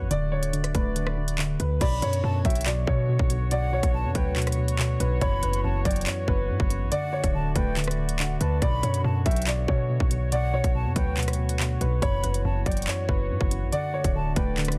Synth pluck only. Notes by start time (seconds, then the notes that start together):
Already playing: F#2 F#3
0.11 D3
0.32 D3
0.53 D3
0.75 A3
0.96 D3
1.17 D3
1.38 D3
1.60 D3
1.81 B2
2.02 B2
2.24 B2
2.45 F#3
2.66 B2
2.87 B2
3.09 B2
3.30 B2
3.51 B2
3.73 B2
3.94 B2
4.15 F#3
4.36 B2
4.58 B2
4.79 B2
5.00 B2
5.21 F#2
5.43 F#2
5.64 F#2
5.85 F#3
6.06 F#2
6.28 F#2
6.49 F#2
6.70 F#2
6.92 D3
7.13 D3
7.34 D3
7.56 A3
7.77 D3
7.98 D3
8.19 D3
8.41 D3
8.62 B2
8.83 B2
9.05 B2
9.26 F#3
9.47 B2
9.68 B2
9.90 B2
10.11 B2
10.32 B2
10.54 B2
10.75 B2
10.96 F#3
11.17 B2
11.39 B2
11.60 B2
11.81 B2
12.02 F#2
12.24 F#2
12.45 F#2
12.66 F#3
12.87 F#2
13.09 F#2
13.30 F#2
13.51 F#2
13.73 D3
13.94 D3
14.15 D3
14.36 A3
14.58 D3